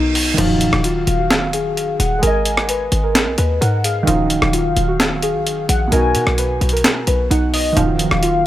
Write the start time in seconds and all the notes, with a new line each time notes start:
Already playing: B1 B2 B3 D#4 F#4, reverse cymbal
0.15 open hi-hat
0.34 D#3 D#4
0.38 D#1 A#1 F#2 F3 D#4 F5, closed hi-hat, crash
0.42 F#3
0.61 closed hi-hat
0.73 D#1, cross-stick
0.84 F4, closed hi-hat
1.07 D#1, closed hi-hat
1.19 F#4
1.31 snare, closed hi-hat
1.53 G#4, closed hi-hat
1.77 closed hi-hat
2.00 D#1 F#5, closed hi-hat
2.19 G#3 G#4 A#4 G#5
2.23 G#1, closed hi-hat
2.27 D#5
2.45 closed hi-hat
2.57 cross-stick
2.69 B4, closed hi-hat
2.92 G#1, closed hi-hat
3.04 A#4
3.15 snare, closed hi-hat
3.27 B1
3.38 D#2 B4, closed hi-hat
3.61 G#2 A#4 F#5, closed hi-hat
3.84 G#4 F5, closed hi-hat
4.03 D#3 D#4
4.07 D#1 A#1 F#2 F3 D#4 F5, closed hi-hat
4.12 F#3
4.30 closed hi-hat
4.42 D#1, cross-stick
4.53 F4, closed hi-hat
4.65 F1
4.76 D#1, closed hi-hat
4.88 F#4
5.00 snare, closed hi-hat
5.22 G#4, closed hi-hat
5.34 A#1
5.47 closed hi-hat
5.52 D#1
5.69 A#1 F#5, closed hi-hat
5.88 B2 B3
5.92 B1 D#4 A#4 G#5, closed hi-hat
5.96 F#4
6.15 B2, closed hi-hat
6.27 B1, cross-stick
6.38 B4, closed hi-hat
6.61 B1, closed hi-hat
6.69 A#4, closed hi-hat
6.77 closed hi-hat
6.84 snare, closed hi-hat
7.07 B1 B4, closed hi-hat
7.31 B1 D#4 F#5, closed hi-hat
7.54 D#5, open hi-hat
7.73 D#3 D#4 F5
7.77 D#1 A#1 F#2 A#2 D#3 F3 D#4 F5, closed hi-hat
7.81 F#3
7.99 closed hi-hat
8.11 D#1, cross-stick
8.23 F4, closed hi-hat